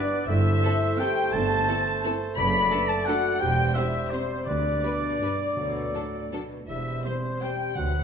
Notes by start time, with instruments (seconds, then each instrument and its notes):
Already playing: bassoon B3, french horn section D4, clarinet B4, oboe D5, violin section D5, trumpet section D5, flute section D5
0.26 double bass section G1, timpani G2, cello section G2, bassoon A3, french horn section E4, clarinet C5, oboe E5, violin section E5, flute section E5, trumpet section E5
0.62 viola section E3 C4, violin section A4
0.98 viola section E3 C4, french horn section G4, violin section A4 G5, oboe G5, flute section G5, trumpet section G5
1.32 double bass section G1, cello section G2, french horn section A4, flute section A5, violin section A5, oboe A5, trumpet section A5
1.68 viola section E3 C4, violin section A4
2.04 viola section E3 C4, violin section A4
2.36 double bass section F#1, cello section F#2, bassoon A3, french horn section B4, clarinet D5, violin section B5, flute section B5, trumpet section B5, oboe B5
2.72 viola section A3 D4, violin section A4
2.88 french horn section A4, oboe A5, violin section A5, trumpet section A5, flute section A5
3.05 viola section A3 D4, french horn section F#4, violin section A4 F#5, oboe F#5, flute section F#5, trumpet section F#5
3.39 double bass section E1, cello section E2, bassoon G3, french horn section G4, clarinet C5, violin section G5, flute section G5, oboe G5, trumpet section G5
3.74 viola section G3 C4, french horn section E4, violin section C5 E5, oboe E5, flute section E5, trumpet section E5
4.10 viola section G3 C4, french horn section C4, oboe C5, violin section C5, flute section C5, trumpet section C5
4.45 cello section D2, double bass section D2, timpani D3, french horn section D4, clarinet B4, violin section D5, oboe D5, trumpet section D5, flute section D5
4.83 cello section B2, viola section G3 D4, violin section B4
5.21 cello section G2, viola section G3 D4, violin section B4
5.56 double bass section D2, cello section B2, timpani D3, bassoon F#3, clarinet A4
5.94 cello section A2, viola section F#3 D4, violin section A4
6.32 cello section B2, viola section F#3 D4, violin section A4
6.67 double bass section E1, cello section E2, bassoon G3, french horn section E4, clarinet C5, violin section E5, trumpet section E5, flute section E5, oboe E5
7.03 viola section G3 C4, french horn section C4, violin section C5, trumpet section C5, flute section C5, oboe C5
7.41 viola section G3 C4, french horn section G4, violin section C5 G5, trumpet section G5, flute section G5, oboe G5
7.75 cello section D2, double bass section D2, timpani D3, bassoon F#3, french horn section F#4, clarinet B4, trumpet section F#5, oboe F#5, violin section F#5, flute section F#5